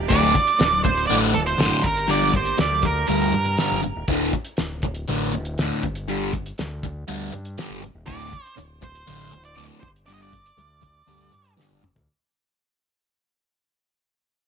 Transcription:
Already playing: string machine D4
0.09 fingered electric bass D1, distorted electric guitar D2 A2 D3, string machine F#3 A3 F#4 A4, lead electric guitar D5, kick, closed hi-hat
0.22 high conga
0.34 muted distorted electric guitar stroke, kick, closed hi-hat
0.47 closed hi-hat
0.59 fingered electric bass D1, muted distorted electric guitar stroke, snare, closed hi-hat
0.73 high conga
0.84 lead electric guitar C5, muted distorted electric guitar stroke, kick, closed hi-hat, low conga
0.97 closed hi-hat
1.07 fingered electric bass A1, distorted electric guitar D2 A2 D3, lead electric guitar D5, closed hi-hat, high conga
1.34 fingered electric bass D1, lead electric guitar A4, muted distorted electric guitar stroke, closed hi-hat, high conga
1.47 lead electric guitar C5, closed hi-hat, low conga
1.58 fingered electric bass F#1, distorted electric guitar D2 A2 D3, snare, closed hi-hat
1.83 fingered electric bass G1, string machine G3 A#3 G4 A#4, lead electric guitar A#4, muted distorted electric guitar stroke, kick, closed hi-hat, low conga
1.97 closed hi-hat
2.08 distorted electric guitar G2 D3 G3, lead electric guitar D5, closed hi-hat
2.22 high conga
2.33 lead electric guitar C5, muted distorted electric guitar stroke, kick, closed hi-hat
2.45 closed hi-hat
2.58 fingered electric bass D2, lead electric guitar D5, muted distorted electric guitar stroke, snare, closed hi-hat
2.71 high conga
2.82 lead electric guitar A#4, muted distorted electric guitar stroke, kick, closed hi-hat, low conga
3.07 fingered electric bass D2, distorted electric guitar G2 D3 G3, lead electric guitar A#4, closed hi-hat
3.32 fingered electric bass G2, muted distorted electric guitar stroke, closed hi-hat
3.45 closed hi-hat, low conga
3.57 distorted electric guitar G2 D3 G3, snare, closed hi-hat
3.70 fingered electric bass F#1, high conga
3.83 muted distorted electric guitar stroke, closed hi-hat
3.96 fingered electric bass D#1
4.08 fingered electric bass D1, distorted electric guitar D2 A2 D3, kick, closed hi-hat
4.33 muted distorted electric guitar stroke, kick, closed hi-hat
4.45 closed hi-hat
4.57 fingered electric bass D1, muted distorted electric guitar stroke, snare, closed hi-hat
4.82 muted distorted electric guitar stroke, kick, closed hi-hat
4.95 closed hi-hat
5.08 fingered electric bass A1, distorted electric guitar D2 A2 D3, closed hi-hat
5.33 fingered electric bass D1, muted distorted electric guitar stroke, closed hi-hat
5.45 closed hi-hat
5.58 fingered electric bass D2, distorted electric guitar D2 A2 D3, snare, closed hi-hat
5.83 fingered electric bass G1, muted distorted electric guitar stroke, kick, closed hi-hat
5.95 closed hi-hat
6.08 distorted electric guitar G2 D3 G3, closed hi-hat
6.33 muted distorted electric guitar stroke, kick, closed hi-hat
6.46 closed hi-hat
6.58 fingered electric bass D2, muted distorted electric guitar stroke, snare, closed hi-hat
6.83 muted distorted electric guitar stroke, kick, closed hi-hat
7.08 fingered electric bass D2, distorted electric guitar G2 D3 G3, closed hi-hat
7.32 fingered electric bass G2, muted distorted electric guitar stroke, closed hi-hat
7.45 closed hi-hat
7.58 distorted electric guitar G2 D3 G3, snare, closed hi-hat
7.70 fingered electric bass F#1
7.82 muted distorted electric guitar stroke, closed hi-hat
7.94 fingered electric bass D#1
8.06 fingered electric bass D1, distorted electric guitar D2 A2 D3, lead electric guitar D5, kick, closed hi-hat
8.31 muted distorted electric guitar stroke, kick, closed hi-hat
8.46 closed hi-hat
8.57 fingered electric bass D1, muted distorted electric guitar stroke, closed hi-hat
8.82 lead electric guitar C5, muted distorted electric guitar stroke, kick, closed hi-hat
8.95 closed hi-hat
9.07 fingered electric bass A1, distorted electric guitar D2 A2 D3, closed hi-hat
9.32 fingered electric bass D1, muted distorted electric guitar stroke, closed hi-hat
9.45 lead electric guitar D5, closed hi-hat
9.56 distorted electric guitar D2 A2 D3, fingered electric bass D2, lead electric guitar D5, closed hi-hat
9.80 fingered electric bass G1, lead electric guitar C5, muted distorted electric guitar stroke, kick, closed hi-hat
9.96 closed hi-hat
10.06 distorted electric guitar G2 D3 G3, lead electric guitar D5, closed hi-hat
10.14 lead electric guitar D#5
10.22 lead electric guitar D5
10.33 muted distorted electric guitar stroke, kick, closed hi-hat
10.46 closed hi-hat
10.57 fingered electric bass D2, muted distorted electric guitar stroke, closed hi-hat
10.81 muted distorted electric guitar stroke, kick, closed hi-hat
11.07 fingered electric bass D2, distorted electric guitar G2 D3 G3, closed hi-hat
11.32 fingered electric bass G2, muted distorted electric guitar stroke, closed hi-hat
11.45 closed hi-hat
11.57 distorted electric guitar G2 D3 G3, snare
11.70 fingered electric bass F#1
11.83 muted distorted electric guitar stroke, mid tom
11.95 fingered electric bass D2, floor tom

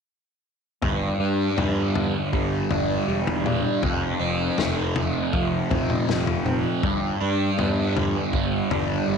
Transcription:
0.82 picked electric bass G1, distorted electric guitar G2, kick, floor tom
1.20 picked electric bass G2, distorted electric guitar D4
1.57 picked electric bass G2, distorted electric guitar B3, floor tom
1.95 distorted electric guitar D3, floor tom
2.33 picked electric bass G1, distorted electric guitar G3, kick
2.70 picked electric bass G1, distorted electric guitar D4, floor tom
3.08 picked electric bass E1, distorted electric guitar G3
3.27 floor tom
3.45 distorted electric guitar D4, mid tom
3.83 picked electric bass F1, distorted electric guitar F2, kick, floor tom
4.20 picked electric bass F1, distorted electric guitar C4
4.57 picked electric bass F1, distorted electric guitar A3, snare, floor tom
4.95 distorted electric guitar C3, floor tom
5.33 picked electric bass F1, distorted electric guitar F3, kick
5.70 picked electric bass F1, distorted electric guitar C4, kick, floor tom, mid tom
5.90 mid tom
6.08 picked electric bass F1, distorted electric guitar F3, snare, mid tom
6.27 floor tom
6.46 distorted electric guitar C4, mid tom
6.83 picked electric bass G1, distorted electric guitar G2, kick, floor tom
7.21 picked electric bass G2, distorted electric guitar D4
7.58 picked electric bass G2, distorted electric guitar B3, floor tom
7.96 distorted electric guitar D3, floor tom
8.33 picked electric bass G1, distorted electric guitar G3, kick
8.71 picked electric bass G1, distorted electric guitar D4, floor tom
9.08 picked electric bass G1, distorted electric guitar G3

